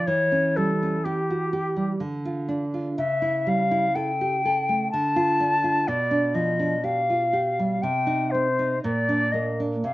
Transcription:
0.07 1.97 E3 soft
0.07 0.58 C#5 medium
0.32 0.71 C#4 soft
0.56 0.96 G3 soft
0.56 1.06 A4 soft
0.83 1.20 C#4 soft
1.04 2.00 G4 soft
1.04 1.43 G4 soft
1.30 1.53 F#4 soft
1.53 1.91 G4 soft
1.77 2.00 G3 soft
2.00 2.95 D3 soft
2.25 2.64 F4 soft
2.49 2.88 D4 soft
2.74 2.98 F4 soft
2.97 4.89 C#3 soft
2.97 3.50 E5 medium
3.22 3.62 E4 soft
3.47 3.87 G3 soft
3.47 3.96 F5 soft
3.71 4.11 E4 soft
3.95 4.35 A4 soft
3.95 4.91 G5 medium
4.21 4.45 G4 soft
4.45 4.83 A4 soft
4.69 4.93 A3 soft
4.91 5.85 D3 soft
4.91 5.89 A5 medium
5.16 5.54 F4 soft
5.40 5.78 D4 soft
5.64 5.88 F4 soft
5.88 7.79 B2 soft
5.88 6.36 D5 medium
6.11 6.50 D4 soft
6.34 6.74 F3 soft
6.34 6.85 D#5 soft
6.59 6.99 D4 soft
6.84 7.24 G4 soft
6.84 7.83 F5 medium
7.10 7.34 F4 soft
7.33 7.73 G4 soft
7.59 7.83 G3 soft
7.82 8.79 C3 soft
7.82 8.32 G5 medium
8.07 8.47 D#4 soft
8.31 8.73 C4 soft
8.31 8.81 C5 soft
8.59 8.83 D#4 soft
8.83 9.83 A#2 soft
8.83 9.33 D5 medium
9.09 9.49 D4 soft
9.32 9.75 A#3 soft
9.32 9.61 D#5 soft
9.60 9.85 D4 soft
9.84 9.94 C3 soft
9.84 9.94 F5 soft

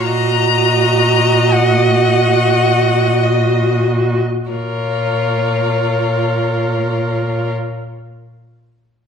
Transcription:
0.03 4.19 A#2 soft
0.03 4.19 F#4 soft
0.03 4.24 D#5 soft
0.03 1.54 A#5 medium
1.52 3.25 F#5 medium
3.23 3.88 D#5 soft
4.51 7.53 A#2 soft
4.51 7.53 F4 soft
4.51 7.53 A#4 soft
4.51 7.52 C#5 soft

